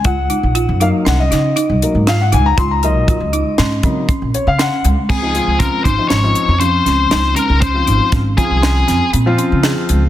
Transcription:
<<
  \new Staff \with { instrumentName = "Lead electric guitar" } { \time 5/4 \key des \major \tempo 4 = 119 r1 r4 | r1 r4 | aes'4 bes'8 c''8 des''4 c''4. bes'8 | c''4 r8 aes'4. r2 | }
  \new Staff \with { instrumentName = "Grand piano" } { \time 5/4 \key des \major ges''4. f''8 ges''16 ees''4. r16 f''16 ges''16 aes''16 bes''16 | c'''16 bes''16 ees''2~ ees''8 r8 des''16 f''16 ges''8 r8 | r16 <f c' ees'>16 <f c' f'>4 r16 <f c' ees'>16 r16 <f c' ees'>8 r16 <f c' f'>4. r8 | r16 <f c' f'>4 r16 <f c' f'>4~ <f c' f'>16 r8 <f c' f'>4. r16 | }
  \new Staff \with { instrumentName = "Grand piano" } { \time 5/4 \key des \major r4. <ges bes ees'>8 r4. <ges bes ees'>8 r4 | r8 <ges bes ees'>8 r4. <ges bes ees'>8 r2 | r1 r4 | r1 r4 | }
  \new Staff \with { instrumentName = "Marimba" } { \time 5/4 \key des \major f'8 ees'8 f'8 ees'8 des'8 ees'8 ees'4 f'8 ees'8 | f'8 ges'8 f'8 ees'8 des'8 c'8 des'4 des'4 | c'4 des'8 ees'8 des'4 des'8 des'8 ees'8 des'8 | des'8 ees'8 des'8 c'8 des'8 c'8 c'8 des'8 aes'4 | }
  \new Staff \with { instrumentName = "Upright bass" } { \clef bass \time 5/4 \key des \major des,8 r16 bes,,8 ges,8 r16 c,8 des8 r16 c,16 r16 aes,8. des,8 | des,8. bes,,8 des,8 r16 aes,8 des8 r16 bes,,16 r16 des8 r16 des,16 r16 | des,8. des,8 r16 aes,,16 r16 aes,,8 r16 f,8. des,8 des,8 r16 des,16~ | des,8 aes,,16 r16 aes,,8 r16 c,8. f,16 r16 bes,8 r16 des8 r16 des,8 | }
  \new DrumStaff \with { instrumentName = "Drums" } \drummode { \time 5/4 <hh bd>8 hh8 hh8 hh8 <hh sn>8 <hh sn>8 hh8 hh8 <hh sn>8 hh8 | <hh bd>8 hh8 <hh bd>8 hh8 <hh sn>8 <hh bd>8 <hh bd>8 hh8 <hh sn>8 hh8 | <cymc bd>8 hh8 <hh bd>8 <hh bd>8 <hh sn>8 hh8 hh8 <hh sn>8 <hh sn>8 hh8 | <hh bd>8 hh8 <hh bd sn>8 <hh bd>8 <hh sn>8 <hh sn>8 hh8 hh8 <hh sn>8 hh8 | }
>>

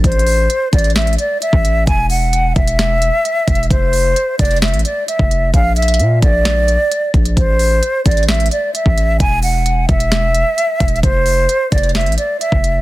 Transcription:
<<
  \new Staff \with { instrumentName = "Flute" } { \time 4/4 \key a \phrygian \tempo 4 = 131 c''4. d''8 e''8 d''8 e''4 | gis''8 fis''4 e''2~ e''8 | c''4. d''8 e''8 d''8 e''4 | f''8 e''4 d''2~ d''8 |
c''4. d''8 e''8 d''8 e''4 | gis''8 fis''4 e''2~ e''8 | c''4. d''8 e''8 d''8 e''4 | }
  \new Staff \with { instrumentName = "808-style bass" } { \clef bass \time 4/4 \key a \phrygian a,,4 r8 a,,4 r8. a,,8. | e,,4. e,,4~ e,,16 r8. e,,8 | f,,4 r8 f,,8. a,,16 r8. f,,8. | bes,,4 bes,8 bes,,4~ bes,,16 r8. bes,,8 |
a,,4 r8 a,,4 r8. a,,8. | e,,4. e,,4~ e,,16 r8. e,,8 | f,,4 r8 f,,8. a,,16 r8. f,,8. | }
  \new DrumStaff \with { instrumentName = "Drums" } \drummode { \time 4/4 \tuplet 3/2 { <hh bd>16 hh16 hh16 hho16 r16 r16 } hh8 <hh bd>32 hh32 hh32 hh32 <hh sn>32 hh32 hh32 hh32 hh8 hh16 bd16 hh8 | <hh bd>8 hho8 hh8 <hh bd>16 hh16 <hh sn>8 hh8 \tuplet 3/2 { hh16 r16 r16 <hh bd>16 hh16 hh16 } | <hh bd>8 hho8 hh8 <hh bd>32 hh32 hh32 hh32 <hh sn>32 hh32 hh32 hh32 hh8 hh16 bd16 hh8 | <hh bd>8 <hh hho>32 hh32 hh32 hh32 hh8 <hh bd>8 <hh sn>8 hh8 hh8 <hh bd>16 hh16 |
<hh bd>8 hho8 hh8 <hh bd>32 hh32 hh32 hh32 <hh sn>32 hh32 hh32 hh32 hh8 hh16 bd16 hh8 | <hh bd>8 hho8 hh8 <hh bd>16 hh16 <hh sn>8 hh8 \tuplet 3/2 { hh16 r16 r16 <hh bd>16 hh16 hh16 } | <hh bd>8 hho8 hh8 <hh bd>32 hh32 hh32 hh32 <hh sn>32 hh32 hh32 hh32 hh8 hh16 bd16 hh8 | }
>>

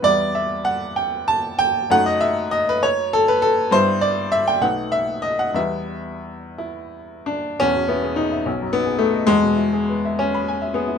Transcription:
\new Staff \with { instrumentName = "Upright piano" } { \time 6/8 \key e \minor \tempo 4. = 66 << { d''8 e''8 fis''8 g''8 a''8 g''8 | fis''16 dis''16 e''8 dis''16 b'16 cis''8 a'16 b'16 a'8 | c''8 d''8 e''16 g''16 fis''8 e''8 dis''16 fis''16 | e''4. e'4 d'8 |
\key e \major cis'8 b8 dis'8 cis'8 b8 a8 | gis4. cis'4 b8 | } \\ { <e, g b e'>2. | <fis, a dis'>2. | <g, g b e'>4. <b,, a b dis'>4. | <e, g b e'>2. |
<e,, e,>16 b,16 e'16 gis'16 b'16 e''16 b,,16 fis,16 dis'16 gis'16 b'16 dis''16 | <e,, e,>16 b,16 e'16 gis'16 b'16 e''16 gis''16 b''16 gis''16 e''16 gis'16 e'16 | } >> }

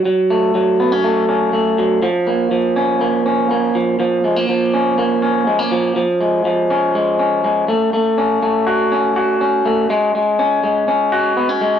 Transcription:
\new Staff \with { instrumentName = "Clean electric guitar" } { \time 4/4 \key ais \phrygian \tempo 4 = 122 fis8 a8 fis8 b16 cis'16 a8 cis'8 a8 fis8 | eis8 ais8 eis8 cis'8 ais8 cis'8 ais8 eis8 | eis8 gis16 ais16 eis8 cis'8 ais8 cis'8 gis16 ais16 eis8 | eis8 gis8 eis8 cis'8 gis8 cis'8 gis8 a8 |
a8 cis'8 a8 fis'8 cis'8 fis'8 cis'8 a8 | gis8 gis8 cis'8 gis8 cis'8 fis'8 b16 cis'16 gis8 | }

